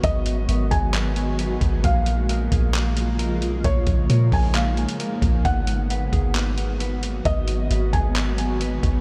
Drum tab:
HH |x-x-x-x-x-x-x-x-|x-x-x-x-x-x-x-x-|x-x-x-o-x-xxx-x-|x-x-x-x-x-x-x-x-|
CP |--------x-------|--------x-------|--------x-------|--------x-------|
BD |o-----o-------o-|o-----o---------|o-o---o-------o-|o-----o---------|

HH |x-x-x-x-x-x-x-x-|
CP |--------x-------|
BD |o-----o-------o-|